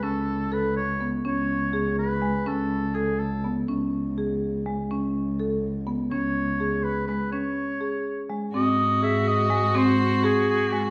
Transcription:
<<
  \new Staff \with { instrumentName = "Oboe" } { \time 5/8 \key gis \phrygian \tempo 4 = 124 a'4 b'8 cis''8. r16 | cis''4. b'4 | a'4 gis'8 a'8. r16 | r2 r8 |
r2 r8 | cis''4. b'8 b'8 | cis''2 r8 | dis''4 e''8 dis''4 |
bis'4 gis'8 gis'8. r16 | }
  \new Staff \with { instrumentName = "Viola" } { \time 5/8 \key gis \phrygian r2 r8 | r2 r8 | r2 r8 | r2 r8 |
r2 r8 | r2 r8 | r2 r8 | fis'2~ fis'8~ |
fis'2~ fis'8 | }
  \new Staff \with { instrumentName = "Marimba" } { \time 5/8 \key gis \phrygian cis'4 a'4 b8 | cis'4 gis'4 gis8 | cis'4 a'4 b8 | cis'4 gis'4 gis8 |
cis'4 a'4 b8 | cis'4 gis'4 gis8 | cis'4 gis'4 gis8 | bis4 gis'4 gis8 |
bis4 gis'4 gis8 | }
  \new Staff \with { instrumentName = "Cello" } { \clef bass \time 5/8 \key gis \phrygian cis,2~ cis,8 | cis,2~ cis,8 | cis,2~ cis,8 | cis,2~ cis,8 |
cis,2~ cis,8 | cis,2~ cis,8 | r2 r8 | gis,2~ gis,8~ |
gis,2~ gis,8 | }
>>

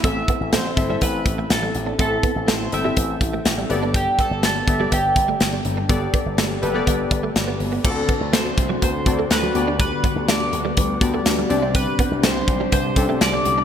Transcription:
<<
  \new Staff \with { instrumentName = "Mandolin" } { \time 4/4 \key g \major \tempo 4 = 123 e''4 c''4 b'4 a'4 | a'4 c''8 e''2 r8 | g'8 a'8 a'4 g'2~ | g'2. r4 |
a'4 c''4 c''4 b'4 | b'4 d''2~ d''8 r8 | b'4 c''4 c''4 d''4 | }
  \new Staff \with { instrumentName = "Synth keys" } { \time 4/4 \key g \major << { <c' e' a' e''>4 r8 <c' e' a' e''>16 <c' e' a' e''>4. r8. | <c' e' a' e''>4 r8 <c' e' a' g''>16 <c' e' a' e''>4. r16 <b g' a' d''>8~ | <b g' a' d''>4 r8 <b g' a' e''>16 <b g' a' d''>4. r8. | <b g' a' d''>4 r8 <b g' a' b'>16 <b g' a' d''>4. r8. |
<c' f' fis' a' d''>4. r4 <c' fis' a' d''>4 <b fis' g' d''>8~ | <b fis' g' d''>4 r4. <b fis' g' d''>4 <c' d' g' d''>8~ | <c' d' g' d''>4 r4. <c' cis' d' g' a'>4 r8 | } \\ { a,4. r2 r8 | a,4. r2 g,8~ | g,4 r2 r8 g,8~ | g,4 r2. |
d4. r2 d8~ | d4 r2 r8 c8~ | c4 r2. | } >> }
  \new Staff \with { instrumentName = "String machine" } { \time 4/4 \key g \major << { r1 | r1 | r1 | r1 |
<a c' fis'>2.~ <a c' fis'>8 <g b fis''>8~ | <g b fis''>2.~ <g b fis''>8 <g d' g'>8~ | <g d' g'>1 | } \\ { r1 | r1 | r1 | r1 |
d1~ | d2.~ d8 c8~ | c1 | } >> }
  \new Staff \with { instrumentName = "Clean electric guitar" } { \time 4/4 \key g \major a16 r16 b16 r16 a16 r8 g16 b16 r8 a16 r16 g16 r16 d'16 | a16 r16 b16 r16 a16 r8 g16 b16 r8 a16 r16 g16 r16 d'16 | g16 r16 b16 r16 a16 r8 g16 b16 r8 a16 r16 g16 r16 d'16 | g16 r16 b16 r16 a16 r8 g16 b16 r8 a16 r16 b16 r16 b16 |
d'16 r16 b16 r16 a16 r8 fis16 b16 r8 a16 r16 fis16 r16 d'16 | g16 r16 b16 r16 a16 r8 g16 b16 r8 a16 r16 g16 r16 d'16 | c'16 r16 b16 r16 a16 r8 g16 b16 r8 a16 r16 g16 r16 d'16 | }
  \new Staff \with { instrumentName = "Slap bass" } { \clef bass \time 4/4 \key g \major a,,8 r16 a,,16 a,,8 g,,8 a,,8 a,,8 a,,8 a,,8 | a,,8 r16 a,,16 a,,8 g,,8 a,,8 a,,8 a,,8 g,,8~ | g,,8 r16 g,,16 g,,8 g,,8 g,,8 g,,8 g,,8 g,,8 | g,,8 r16 g,,16 g,,8 fis,,8 g,,8 g,,8 g,,8 g,,8 |
d,8 r16 d,16 d,8 c,8 d,8 d,8 d,8 d,8~ | d,8 r16 d,16 d,8 d,8 d,8 d,8 d,8 c,8~ | c,8 r16 c,16 c,8 b,,8 c,8 c,8 c,8 c,8 | }
  \new DrumStaff \with { instrumentName = "Drums" } \drummode { \time 4/4 <hh bd>8 <hh bd>8 <hh sn>8 <hh bd>8 <hh bd>8 <hh bd>8 <hh sn>8 hh8 | <hh bd>8 <hh bd>8 <hh sn>8 hh8 <hh bd>8 <hh bd>8 <hh sn>8 hh8 | <hh bd>8 <hh bd>8 <hh sn>8 <hh bd>8 <hh bd>8 <hh bd>8 <hh sn>8 hh8 | <hh bd>8 <hh bd>8 <hh sn>8 hh8 <hh bd>8 <hh bd>8 <hh sn>8 hho8 |
<cymc bd>8 <hh bd>8 <hh sn>8 <hh bd>8 <hh bd>8 <hh bd>8 <hh sn>8 hh8 | <hh bd>8 <hh bd>8 <hh sn>8 hh8 <hh bd>8 <hh bd>8 <hh sn>8 hh8 | <hh bd>8 <hh bd>8 <hh sn>8 <hh bd>8 <hh bd>8 <hh bd>8 <hh sn>8 hh8 | }
>>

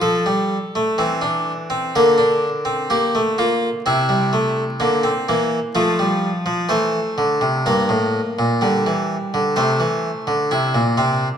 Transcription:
<<
  \new Staff \with { instrumentName = "Harpsichord" } { \time 4/4 \key f \mixolydian \tempo 4 = 63 a'2 bes'4 g'8 f'8 | e'2 f'4 c''4 | bes'2 c''2 | }
  \new Staff \with { instrumentName = "Harpsichord" } { \clef bass \time 4/4 \key f \mixolydian << { r16 g8 a16 c'16 d'8 c'16 bes16 d'8 c'16 bes16 a16 bes8 | c'16 g16 a8 bes16 c'16 bes8 a16 g8 f16 a4 | bes4 g4 a4 e'8 c'8 | } \\ { f4 e4 d2 | c4 d8 e8 f4 e8 d16 c16 | g,16 a,8 bes,16 d16 e8 d16 c16 e8 d16 c16 bes,16 c8 | } >> }
>>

